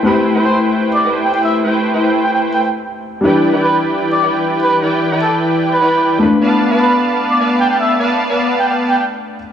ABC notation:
X:1
M:4/4
L:1/16
Q:1/4=151
K:Am
V:1 name="Muted trumpet"
z4 c2 z3 d2 z g g e2 | z6 g g z g g z4 z | z4 B2 z3 d2 z3 B2 | z4 A2 z3 B4 z3 |
z4 B2 z3 d2 z g g e2 | z6 g g z g g z4 z |]
V:2 name="Supersaw synth"
[A,EBcg]3 [A,EBcg]6- [A,EBcg] [A,EBcg]6 | [A,EBcg]3 [A,EBcg]6- [A,EBcg] z6 | [E,EBdg]3 [E,EBdg]6- [E,EBdg] [E,EBdg]6 | [E,EBdg]3 [E,EBdg]6- [E,EBdg] [E,EBdg]4 z2 |
[B,Bdfa]3 [B,Bdfa]6- [B,Bdfa] [B,Bdfa]6 | [B,Bdfa]3 [B,Bdfa]6- [B,Bdfa] z6 |]
V:3 name="Grand piano"
[A,CGb]16- | [A,CGb]16 | [G,DEB]16- | [G,DEB]12- [G,DEB]2 [A,DFB]2- |
[A,DFB]16- | [A,DFB]12- [A,DFB]2 z2 |]